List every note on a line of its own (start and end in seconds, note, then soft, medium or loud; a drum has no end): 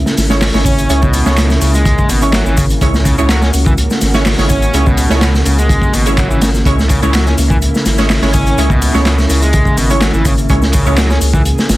0.00 11.77 C#3 medium
0.00 0.27 G#3 medium
0.00 11.77 A#3 medium
0.00 0.27 C#4 medium
0.00 0.27 E4 medium
0.00 2.80 E4 loud
0.00 0.27 C#5 loud
0.06 snare soft
0.06 shaker soft
0.17 0.51 G#1 medium
0.17 snare medium
0.17 closed hi-hat medium
0.17 open hi-hat medium
0.17 shaker medium
0.30 0.42 G#3 medium
0.30 0.42 C#4 medium
0.30 0.42 E4 medium
0.30 0.42 C#5 loud
0.30 snare medium
0.30 shaker soft
0.41 snare loud
0.41 clap loud
0.41 open hi-hat medium
0.41 shaker soft
0.54 0.86 G#1 medium
0.54 0.87 G#3 medium
0.54 0.87 C#4 medium
0.54 0.87 E4 medium
0.54 0.87 C#5 medium
0.54 snare medium
0.54 shaker soft
0.65 1.01 C#4 loud
0.65 kick loud
0.65 closed hi-hat medium
0.65 open hi-hat medium
0.65 shaker medium
0.78 closed hi-hat soft
0.78 shaker soft
0.89 1.23 C#2 loud
0.89 1.03 G#3 medium
0.89 1.03 C#4 medium
0.89 1.03 E4 medium
0.89 1.03 C#5 medium
0.89 closed hi-hat medium
0.89 shaker soft
1.02 1.49 B2 loud
1.02 kick loud
1.02 shaker soft
1.14 closed hi-hat medium
1.14 open hi-hat medium
1.14 shaker medium
1.26 1.58 C#2 loud
1.26 1.38 G#3 medium
1.26 1.38 C#4 medium
1.26 1.38 E4 medium
1.26 1.38 C#5 medium
1.26 snare soft
1.26 shaker soft
1.37 snare loud
1.37 clap loud
1.37 closed hi-hat loud
1.37 shaker soft
1.50 snare medium
1.50 shaker soft
1.61 1.95 C#2 loud
1.61 1.73 C#3 medium
1.61 closed hi-hat medium
1.61 open hi-hat medium
1.61 shaker medium
1.74 2.08 G#3 medium
1.74 closed hi-hat soft
1.74 shaker soft
1.85 kick loud
1.85 closed hi-hat medium
1.85 shaker soft
1.98 kick medium
1.98 shaker soft
2.09 2.43 G#1 medium
2.09 2.20 B2 medium
2.09 closed hi-hat medium
2.09 open hi-hat medium
2.09 shaker medium
2.22 2.79 G#3 medium
2.22 2.79 C#4 medium
2.22 2.79 E4 medium
2.22 2.79 C#5 medium
2.22 closed hi-hat soft
2.22 shaker soft
2.33 2.45 F#3 medium
2.33 snare loud
2.33 clap loud
2.33 closed hi-hat medium
2.33 shaker soft
2.46 2.78 G#1 medium
2.46 2.57 E3 medium
2.46 shaker soft
2.57 2.64 C#3 medium
2.57 kick loud
2.57 closed hi-hat medium
2.57 open hi-hat medium
2.57 shaker medium
2.70 closed hi-hat soft
2.70 shaker soft
2.81 3.15 C#2 loud
2.81 2.95 G#3 medium
2.81 2.95 C#4 medium
2.81 2.95 E4 medium
2.81 6.64 F#4 loud
2.81 2.95 C#5 medium
2.81 kick loud
2.81 closed hi-hat loud
2.81 shaker soft
2.94 snare medium
2.94 shaker soft
3.05 3.16 C#3 loud
3.05 kick loud
3.05 closed hi-hat medium
3.05 open hi-hat medium
3.05 shaker medium
3.18 3.50 C#2 loud
3.18 3.28 C#3 medium
3.18 4.11 G#3 medium
3.18 4.11 C#4 medium
3.18 4.11 E4 medium
3.18 4.11 C#5 loud
3.18 shaker soft
3.29 3.41 F#3 medium
3.29 snare loud
3.29 clap loud
3.29 closed hi-hat medium
3.29 shaker soft
3.42 3.48 C#4 medium
3.42 snare soft
3.42 shaker soft
3.54 3.87 C#2 medium
3.54 closed hi-hat medium
3.54 open hi-hat medium
3.54 shaker medium
3.66 3.72 E3 medium
3.66 kick loud
3.66 shaker soft
3.78 closed hi-hat medium
3.78 shaker soft
3.90 snare soft
3.90 shaker soft
4.01 4.35 G#1 medium
4.01 snare soft
4.01 closed hi-hat medium
4.01 open hi-hat medium
4.01 shaker medium
4.14 4.26 G#3 medium
4.14 4.26 C#4 medium
4.14 4.26 E4 medium
4.14 4.26 C#5 loud
4.14 snare medium
4.14 shaker soft
4.25 snare loud
4.25 clap loud
4.25 open hi-hat medium
4.25 shaker soft
4.38 4.71 G#1 loud
4.38 4.71 G#3 medium
4.38 4.71 C#4 medium
4.38 4.71 E4 medium
4.38 4.71 C#5 medium
4.38 snare medium
4.38 shaker soft
4.50 4.85 C#4 loud
4.50 kick loud
4.50 closed hi-hat medium
4.50 open hi-hat medium
4.50 shaker medium
4.62 closed hi-hat soft
4.62 shaker soft
4.74 5.07 C#2 loud
4.74 4.87 G#3 medium
4.74 4.87 C#4 medium
4.74 4.87 E4 medium
4.74 4.87 C#5 medium
4.74 closed hi-hat medium
4.74 shaker soft
4.86 5.33 B2 loud
4.86 kick loud
4.86 shaker soft
4.97 closed hi-hat medium
4.97 open hi-hat medium
4.97 shaker medium
5.09 5.43 C#2 loud
5.09 5.22 G#3 medium
5.09 5.22 C#4 medium
5.09 5.22 E4 medium
5.09 5.22 C#5 medium
5.09 snare soft
5.09 shaker soft
5.21 snare loud
5.21 clap loud
5.21 closed hi-hat medium
5.21 shaker soft
5.34 snare medium
5.34 shaker soft
5.45 5.79 C#2 loud
5.45 5.57 C#3 medium
5.45 closed hi-hat medium
5.45 open hi-hat medium
5.45 shaker medium
5.58 5.93 G#3 medium
5.58 closed hi-hat soft
5.58 shaker soft
5.69 kick loud
5.69 closed hi-hat medium
5.69 shaker soft
5.82 kick loud
5.82 shaker soft
5.93 6.27 G#1 medium
5.93 6.05 B2 medium
5.93 closed hi-hat medium
5.93 open hi-hat medium
5.93 shaker medium
6.06 6.63 G#3 medium
6.06 6.63 C#4 medium
6.06 6.63 E4 medium
6.06 6.63 C#5 medium
6.06 closed hi-hat soft
6.06 shaker soft
6.18 6.29 F#3 medium
6.18 kick loud
6.18 clap loud
6.18 closed hi-hat medium
6.18 shaker soft
6.30 6.63 G#1 medium
6.30 6.41 E3 medium
6.30 shaker soft
6.42 6.48 C#3 medium
6.42 snare loud
6.42 closed hi-hat medium
6.42 open hi-hat medium
6.42 shaker medium
6.54 snare soft
6.54 shaker soft
6.65 6.99 C#2 loud
6.65 6.79 G#3 medium
6.65 6.79 C#4 medium
6.65 10.48 E4 loud
6.65 6.79 E4 medium
6.65 6.79 C#5 medium
6.65 kick loud
6.65 closed hi-hat medium
6.65 shaker soft
6.79 snare soft
6.79 shaker soft
6.89 7.01 C#3 loud
6.89 kick medium
6.89 closed hi-hat medium
6.89 open hi-hat medium
6.89 shaker medium
7.02 7.35 C#2 loud
7.02 7.12 C#3 medium
7.02 7.95 G#3 medium
7.02 7.95 C#4 medium
7.02 7.95 E4 medium
7.02 7.95 C#5 loud
7.02 shaker soft
7.13 7.25 F#3 medium
7.13 snare loud
7.13 clap loud
7.13 closed hi-hat loud
7.13 shaker soft
7.26 7.32 C#4 medium
7.26 snare soft
7.26 shaker soft
7.38 7.71 C#2 medium
7.38 closed hi-hat medium
7.38 open hi-hat medium
7.38 shaker medium
7.50 7.56 E3 medium
7.50 kick medium
7.50 shaker soft
7.62 closed hi-hat medium
7.62 shaker soft
7.75 snare soft
7.75 shaker soft
7.86 8.19 G#1 medium
7.86 snare medium
7.86 closed hi-hat medium
7.86 open hi-hat medium
7.86 shaker medium
7.98 8.10 G#3 medium
7.98 8.10 C#4 medium
7.98 8.10 E4 medium
7.98 8.10 C#5 loud
7.98 snare medium
7.98 shaker soft
8.10 snare loud
8.10 clap loud
8.10 open hi-hat medium
8.10 shaker soft
8.22 8.54 G#1 medium
8.22 8.55 G#3 medium
8.22 8.55 C#4 medium
8.22 8.55 E4 medium
8.22 8.55 C#5 medium
8.22 snare medium
8.22 shaker soft
8.34 8.69 C#4 loud
8.34 kick loud
8.34 closed hi-hat medium
8.34 open hi-hat medium
8.34 shaker medium
8.47 closed hi-hat soft
8.47 shaker soft
8.57 8.91 C#2 loud
8.57 8.71 G#3 medium
8.57 8.71 C#4 medium
8.57 8.71 E4 medium
8.57 8.71 C#5 medium
8.57 closed hi-hat medium
8.57 shaker soft
8.70 9.17 B2 loud
8.70 kick loud
8.70 shaker soft
8.82 closed hi-hat medium
8.82 open hi-hat medium
8.82 shaker medium
8.94 9.26 C#2 loud
8.94 9.06 G#3 medium
8.94 9.06 C#4 medium
8.94 9.06 E4 medium
8.94 9.06 C#5 loud
8.94 snare soft
8.94 shaker soft
9.05 snare loud
9.05 clap loud
9.05 closed hi-hat medium
9.05 shaker soft
9.18 snare soft
9.18 shaker soft
9.30 9.63 C#2 medium
9.30 9.41 C#3 medium
9.30 closed hi-hat medium
9.30 open hi-hat medium
9.30 shaker medium
9.42 9.77 G#3 medium
9.42 closed hi-hat soft
9.42 shaker soft
9.53 kick loud
9.53 closed hi-hat medium
9.53 shaker soft
9.65 kick loud
9.65 shaker soft
9.77 10.11 G#1 medium
9.77 9.89 B2 medium
9.77 closed hi-hat medium
9.77 open hi-hat medium
9.77 shaker medium
9.90 10.47 G#3 medium
9.90 10.47 C#4 medium
9.90 10.47 E4 medium
9.90 10.47 C#5 medium
9.90 closed hi-hat soft
9.90 shaker soft
10.01 10.13 F#3 medium
10.01 snare loud
10.01 clap loud
10.01 closed hi-hat medium
10.01 shaker soft
10.14 10.46 G#1 medium
10.14 10.25 E3 medium
10.14 shaker soft
10.25 10.32 C#3 medium
10.25 kick loud
10.25 closed hi-hat medium
10.25 open hi-hat medium
10.25 shaker medium
10.38 closed hi-hat soft
10.38 shaker soft
10.49 10.83 C#2 loud
10.49 10.63 G#3 medium
10.49 10.63 C#4 medium
10.49 10.63 E4 medium
10.49 11.77 G#4 loud
10.49 10.63 C#5 medium
10.49 kick loud
10.49 closed hi-hat medium
10.49 shaker soft
10.62 snare medium
10.62 shaker soft
10.73 10.85 C#3 loud
10.73 kick loud
10.73 closed hi-hat medium
10.73 open hi-hat medium
10.73 shaker medium
10.86 11.18 C#2 loud
10.86 10.96 C#3 medium
10.86 11.77 G#3 medium
10.86 11.77 C#4 medium
10.86 11.77 E4 medium
10.86 11.77 C#5 loud
10.86 shaker soft
10.97 11.10 F#3 medium
10.97 snare loud
10.97 clap loud
10.97 closed hi-hat medium
10.97 shaker soft
11.10 11.16 C#4 medium
11.10 snare soft
11.10 shaker soft
11.21 11.54 C#2 loud
11.21 closed hi-hat medium
11.21 open hi-hat medium
11.21 shaker medium
11.34 11.40 E3 medium
11.34 kick loud
11.34 shaker soft
11.45 closed hi-hat medium
11.45 shaker soft
11.58 snare medium
11.58 shaker soft
11.69 11.77 G#1 medium
11.69 snare loud
11.69 closed hi-hat medium
11.69 open hi-hat medium
11.69 shaker medium